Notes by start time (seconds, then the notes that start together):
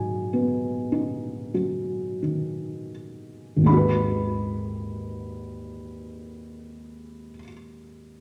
Already playing: G#2 D#3 F#3 G#5
0.33 B3
0.92 D#4
1.54 F#3
2.22 D#3
3.56 G#1
3.60 D#2 G#3
3.66 D#4 B5
3.73 F#4
3.77 B4